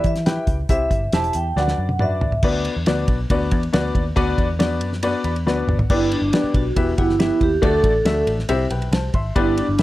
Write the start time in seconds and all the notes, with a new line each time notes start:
Already playing: E3 E4 G4 B4 E5
0.04 E3 E5, kick, closed hi-hat
0.15 snare, closed hi-hat
0.26 E4 G4 B4 G5, snare, closed hi-hat
0.47 C#2, kick, closed hi-hat
0.69 C2 C3 E4 G4 C5 E5, kick, closed hi-hat
0.91 G1, kick, closed hi-hat
1.13 E1 E4 G4 C5 E5 A5, snare, closed hi-hat
1.24 closed hi-hat
1.33 E2 G5, closed hi-hat
1.56 D2 D3 D4 F#4 B4 D5 F#5, snare
1.68 snare
1.78 F#2
1.89 high tom
1.99 D4 F#4 B4 D5 E5, mid tom
2.21 D#2, floor tom
2.32 floor tom
2.43 D2 D3 B3 D4 F#4 B4 D5, kick, crash
2.65 ride
2.77 E2
2.86 D2 B3 D4 F#4 B4 D5, snare, ride
3.08 B1, kick, ride
3.30 D2 B3 D4 F#4 B4 D5, kick, ride
3.51 E2, kick, ride
3.63 ride
3.73 D2 B3 D4 F#4 B4 D5, snare, ride
3.95 D#2, kick, ride
4.16 D2 D3 B3 D4 F#4 B4 D5, kick, ride
4.38 E2, kick, ride
4.59 B3 D4 F#4 B4 D5, snare, ride
4.81 F#2, ride
4.93 snare
5.03 B3 D4 F#4 B4 D5, ride
5.24 E2 B5, ride
5.36 ride
5.45 D2 B3 D4 F#4 B4 D5 F#5, snare
5.68 G#1, mid tom
5.79 floor tom
5.90 G1 G2 B3 D4 E4 G4 B4 D5, kick, crash
6.12 D4, ride
6.22 G1
6.33 B3 D4 G4 B4 D5, snare, ride
6.44 muted picked electric bass stroke
6.54 B1 F#4, kick, ride
6.76 E1 E3 B3 E4 G4 B4 E5, kick, ride
6.98 G1 B3 E4 G4 B4 F#5, kick, ride
7.09 snare
7.19 B3 E4 G4 B4 E5, snare, ride
7.41 D#2 G4, kick, ride
7.62 D2 D3 A3 D4 F#4 A4 D5, kick, ride
7.84 A1, kick, ride
8.05 D2 A3 D4 F#4 A4 E5, snare, ride
8.27 A1, ride
8.39 snare
8.49 C2 C3 C4 E4 G4 C5 E5, ride
8.70 B1 B4 G5, ride
8.82 ride
8.92 C2 C5 A5, snare, ride
9.14 G#1 E5 C6, kick, ride
9.35 G1 G2 B3 D4 E4 G4 B4 D5, kick, ride
9.57 D4, ride
9.69 G1
9.78 B3 D4 G4 B4 E5, snare, ride